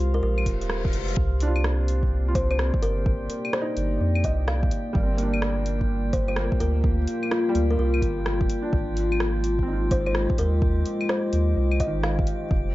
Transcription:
Already playing: analog synth pad G#3 F4 G4 C5 D#5, synth texture F4 F5
0.00 sub bass C2
0.14 kalimba A#4
0.23 sub bass A#1, kalimba A#4, reverse cymbal
0.38 claves
0.46 sub bass D#1, kick, closed hi-hat
0.61 closed hi-hat
0.70 cross-stick
0.85 kick
0.93 sub bass F1, closed hi-hat
1.08 closed hi-hat
1.17 sub bass C2, analog synth pad A#3, synth texture G4 G5, kick
1.32 analog synth pad D5
1.38 analog synth pad C4, closed hi-hat
1.43 felt piano D4
1.47 felt piano F4
1.56 claves
1.64 cross-stick
1.88 closed hi-hat
2.03 kick
2.28 felt piano F4
2.35 kalimba C5, kick, closed hi-hat
2.51 kalimba C5, claves
2.59 cross-stick
2.74 kick
2.82 sub bass G1, kalimba A#4, closed hi-hat
3.06 kick
3.30 closed hi-hat
3.45 claves
3.53 kalimba C5, cross-stick
3.61 felt piano D#4
3.77 sub bass G1, closed hi-hat
4.01 sub bass F2
4.15 claves
4.24 sub bass C2, kalimba D#5, kick, closed hi-hat
4.48 kalimba F5, cross-stick
4.63 kick
4.71 closed hi-hat
4.93 sub bass G1, felt piano G3, kick
4.98 felt piano A#3
5.03 felt piano C4
5.07 analog synth pad F4
5.17 felt piano A#3, closed hi-hat
5.22 felt piano D4
5.34 claves
5.42 cross-stick
5.66 closed hi-hat
5.81 kick
5.99 analog synth pad F5
6.13 kalimba C5, kick, closed hi-hat
6.28 kalimba C5, claves
6.36 felt piano A#3, cross-stick
6.52 kick
6.60 sub bass D2, kalimba A#4, closed hi-hat
6.84 kick
7.08 closed hi-hat
7.23 claves
7.31 kalimba F4, cross-stick
7.49 felt piano G3
7.54 sub bass D2, felt piano A#3, closed hi-hat
7.71 kalimba A#4
7.78 sub bass C2, kalimba A#4
7.94 claves
8.02 sub bass G1, kick, closed hi-hat
8.26 cross-stick
8.41 kick
8.50 closed hi-hat
8.62 felt piano D4
8.73 sub bass G#1, kick
8.94 analog synth pad G#3, closed hi-hat
9.12 claves
9.19 analog synth pad D#5, cross-stick
9.44 closed hi-hat
9.59 felt piano C4, analog synth pad C5, kick
9.68 felt piano D#4
9.73 felt piano F4
9.91 kalimba C5, kick, closed hi-hat
10.06 kalimba C5, claves
10.15 cross-stick
10.30 kick
10.38 sub bass D#2, kalimba A#4, closed hi-hat
10.62 kick
10.86 closed hi-hat
11.01 claves
11.09 kalimba C5, cross-stick
11.33 sub bass D#2, closed hi-hat
11.57 sub bass C2
11.71 claves
11.80 sub bass G#1, kalimba D#5, kick, closed hi-hat
11.87 felt piano D#3
12.03 kalimba F5, cross-stick
12.19 kick
12.27 closed hi-hat
12.51 sub bass F1, analog synth pad G#3, kick

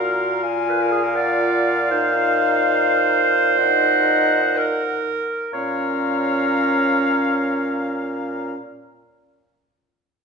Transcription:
Already playing: bassoon A#2, french horn F#4, clarinet A#4, oboe F5, flute A#5
0.43 french horn F4, oboe F5, flute G#5
0.69 clarinet B4
0.81 clarinet A#4
0.91 clarinet G#4
1.04 clarinet A#4
1.15 clarinet D5, flute F#5
1.91 french horn D#4, clarinet C5, flute F5
3.58 french horn D#4, flute D#5, oboe F#5
4.57 clarinet A#4
5.51 bassoon A#2, french horn C#4, clarinet C#5, oboe F5, flute A#5

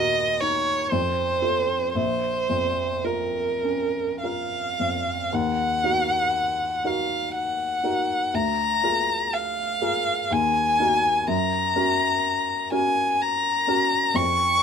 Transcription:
Already playing: grand piano D#2 A#2 F#4 A#4, violin D#5
0.41 grand piano D#4, violin C#5
0.90 grand piano F2, violin C5
1.42 grand piano F4 A4
1.95 grand piano A#1, violin C5
2.49 grand piano F2
3.04 grand piano F4 A#4, violin A#4
3.64 grand piano C#4
4.23 grand piano F4 A#4, violin F5
4.80 grand piano F2
5.33 grand piano D#2, violin F#5
5.84 grand piano D#4 F#4 A#4
6.84 grand piano D#4 F#4 A#4, violin F5
7.35 violin F#5
7.84 grand piano D#4 F#4 A#4
8.34 grand piano D2, violin A#5
8.83 grand piano F4 G#4 A#4
9.34 violin F5
9.81 grand piano F4 G#4 A#4
10.31 grand piano D#2, violin G#5
10.80 grand piano D#4 F#4 A#4
11.27 grand piano F#2, violin A#5
11.76 grand piano C#4 F#4 A#4
12.71 grand piano C#4 F#4 A#4, violin G#5
13.21 violin A#5
13.67 grand piano C#4 F#4 A#4
14.14 grand piano F2, violin C#6

